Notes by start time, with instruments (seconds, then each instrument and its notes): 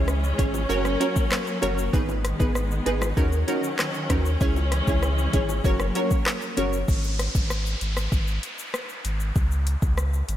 Already playing: sub bass C#2, string section E3 G#3 C#4, synth stab C#4 E4 G#4 C#5
0.08 cross-stick, shaker
0.24 shaker
0.38 sub bass G#1, synth stab C#4 E4 G#4 C#5, kick, closed hi-hat, shaker
0.54 high bongo, shaker
0.69 sub bass F#1, string section F#3 A#3, synth stab C#4 F#4 A#4 C#5, shaker
0.85 cross-stick, shaker
1.00 synth stab C#4 F#4 A#4 C#5, closed hi-hat, high bongo, shaker
1.16 kick, shaker
1.32 cross-stick, clap, shaker
1.47 shaker
1.62 sub bass F#1, synth stab C#4 F#4 A#4 C#5, closed hi-hat, low bongo, shaker
1.78 shaker
1.93 sub bass G#1, string section D#3 G#3 B3, synth stab B3 D#4 G#4 B4, kick, shaker
2.09 high bongo, shaker
2.25 cross-stick, closed hi-hat, shaker
2.40 sub bass G#1, synth stab B3 D#4 G#4 B4, kick, shaker
2.55 cross-stick, shaker
2.71 shaker
2.86 sub bass G#1, synth stab B3 D#4 G#4 B4, closed hi-hat, shaker
3.02 cross-stick, high bongo, shaker
3.17 sub bass D#2, string section D#3 F#3 C#4, synth stab C#4 D#4 F#4 A#4, kick, shaker
3.32 shaker
3.47 synth stab C#4 D#4 F#4 A#4, closed hi-hat, high bongo, shaker
3.63 shaker
3.79 cross-stick, clap, shaker
3.94 shaker
4.10 sub bass D#2, synth stab C#4 D#4 F#4 A#4, kick, cross-stick, closed hi-hat, low bongo, shaker
4.25 shaker
4.41 sub bass C#2, string section E3 G#3, synth stab C#4 E4 G#4 C#5, kick, shaker
4.56 high bongo, shaker
4.72 cross-stick, closed hi-hat, shaker
4.87 sub bass C#2, synth stab C#4 E4 G#4 C#5, kick, shaker
5.03 cross-stick, shaker
5.18 shaker
5.33 sub bass G#1, synth stab C#4 E4 G#4 C#5, kick, closed hi-hat, low bongo, shaker
5.49 high bongo, shaker
5.64 sub bass F#1, string section F#3 A#3, synth stab C#4 F#4 A#4 C#5, kick, shaker
5.80 cross-stick, shaker
5.95 synth stab C#4 F#4 A#4 C#5, closed hi-hat, high bongo, shaker
6.11 kick, shaker
6.26 cross-stick, clap, shaker
6.42 shaker
6.57 sub bass F#1, synth stab C#4 F#4 A#4 C#5, closed hi-hat, low bongo, shaker
6.73 shaker
6.88 sub bass G#1, kick, downlifter, shaker
7.04 shaker
7.19 cross-stick, closed hi-hat, shaker
7.35 sub bass G#1, kick, shaker
7.50 cross-stick, shaker
7.66 shaker
7.81 sub bass G#1, closed hi-hat, shaker
7.97 cross-stick, shaker
8.12 sub bass G#1, kick, shaker
8.28 shaker
8.43 closed hi-hat, shaker
8.58 shaker
8.74 cross-stick, shaker
8.89 shaker
9.05 sub bass G#1, closed hi-hat, shaker
9.20 shaker
9.36 sub bass C#2, kick, shaker
9.51 shaker
9.67 closed hi-hat, shaker
9.82 sub bass C#2, kick, shaker
9.98 cross-stick, shaker
10.13 shaker
10.28 sub bass G#1, closed hi-hat, shaker